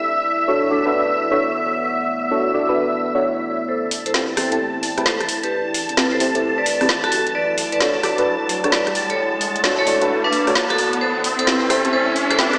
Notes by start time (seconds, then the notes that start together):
Already playing: B3 E4 A4 D5 E5
0.48 D4 F#4 A4 C#5
0.71 D4 F#4 A4 D5
0.80 F#5
0.85 D4 F#4 A4 B4
1.31 D4 F#4 A4 C#5
2.31 D4 F#4 A4 C#5
2.54 D4 F#4 A4 D5
2.69 D4 F#4 A4 B4
3.15 D4 F#4 A4 C#5
3.68 A4 C5 A5, riser
3.83 A1
3.91 open hi-hat
4.06 E2 A4 C5, closed hi-hat
4.14 C4 E4 G4 B4, snare
4.32 G5
4.37 C4 E4 G4 A4 C5, cross-stick, open hi-hat
4.52 C4 E4 G4 A4, closed hi-hat
4.60 A2
4.83 open hi-hat
4.98 C4 E4 G4 B4, cross-stick, closed hi-hat
5.06 A4 C5, snare
5.21 A1, cross-stick, closed hi-hat
5.29 open hi-hat
5.43 G4 B4, closed hi-hat
5.66 A1
5.74 open hi-hat
5.89 E2, closed hi-hat
5.97 C4 E4 G4 B4, snare
6.12 A4 C5
6.20 C4 E4 G4 C5, open hi-hat
6.35 C4 E4 G4 A4, closed hi-hat
6.58 B4 D5
6.66 open hi-hat
6.81 C4 E4 G4 B4, cross-stick, open hi-hat
6.89 snare
7.04 F#4 A4, cross-stick, closed hi-hat
7.12 B1, open hi-hat
7.27 closed hi-hat
7.34 B4 D5 F#5
7.50 B1
7.58 open hi-hat
7.72 F#1 B4 D5, closed hi-hat
7.80 D4 F#4 A4 C#5, snare
8.03 D4 F#4 A4 B4 D5, cross-stick, open hi-hat
8.18 D4 F#4 A4 B4, closed hi-hat
8.27 F#1
8.49 open hi-hat
8.64 D4 F#4 A4 C#5, cross-stick, closed hi-hat
8.72 B4 D5, snare
8.87 B1, cross-stick, closed hi-hat
8.95 open hi-hat
9.10 A4 C#5, closed hi-hat
9.33 B1
9.41 open hi-hat
9.56 F#1, closed hi-hat
9.64 D4 F#4 A4 C#5, snare
9.79 A4 C#5
9.87 D4 F#4 A4 D5, open hi-hat
10.02 D4 F#4 A4 B4, closed hi-hat
10.24 A1 D4 B4
10.33 open hi-hat
10.47 F#1 D4 F#4 A4 C#5, cross-stick, open hi-hat
10.55 snare
10.70 F#4 A4, cross-stick, closed hi-hat
10.78 open hi-hat
10.93 F#1, closed hi-hat
11.01 A4 C5 E5
11.16 A1
11.24 open hi-hat
11.39 E2 A4 C5, closed hi-hat
11.47 C4 E4 G4 B4, snare
11.70 C4 E4 G4 A4 C5, cross-stick, open hi-hat
11.85 C4 E4 G4 A4, closed hi-hat
11.93 A2 A4 C5
12.14 G5, open hi-hat
12.30 A4 C5, cross-stick, closed hi-hat
12.39 C4 E4 G4 B4, snare
12.53 A1, cross-stick, closed hi-hat